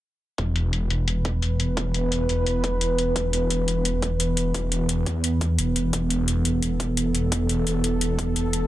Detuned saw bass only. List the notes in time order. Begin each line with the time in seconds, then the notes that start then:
0.38 E1
0.90 E1
1.77 E1
2.29 E1
3.16 E1
3.68 E1
4.54 E1
5.07 E2
5.58 E1
5.93 E1
7.32 E1
7.84 E1